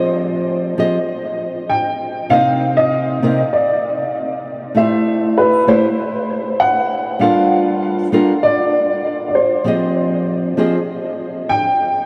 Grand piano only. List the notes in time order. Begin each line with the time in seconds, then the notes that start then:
Already playing: C5
1.69 G5
2.30 F5
2.77 D#5
3.53 D5
4.77 E5
5.38 B4
5.68 C5
6.60 F#5
7.21 F5
8.43 D5
9.28 D5
9.35 C5
11.49 G5